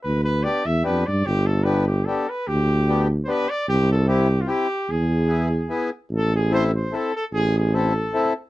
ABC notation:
X:1
M:3/4
L:1/16
Q:1/4=148
K:Gmix
V:1 name="Trumpet"
B2 B2 d2 e2 B2 d2 | G2 A2 B2 G2 A2 B2 | G6 z3/2 c/2 B2 d2 | G2 A2 G3 F G4 |
^G8- G2 z2 | [K:Am] A2 ^G2 c2 c2 A2 A2 | ^G2 G2 A6 z2 |]
V:2 name="Accordion"
z4 [B,DG]2 z2 [B,DG]2 z2 | z4 [B,DG]2 z2 [B,DG]2 z2 | z4 [B,DG]2 z2 [B,DG]2 z2 | z4 [CEG]2 z2 [CEG]2 z2 |
z4 [B,E^G]2 z2 [B,EG]2 z2 | [K:Am] z4 [CEA]2 z2 [CEA]2 z2 | z4 [CEA]2 z2 [CEA]2 z2 |]
V:3 name="Tuba" clef=bass
D,,6 E,,2 F,,2 G,,2 | G,,,12 | D,,12 | C,,12 |
E,,12 | [K:Am] A,,,12 | A,,,12 |]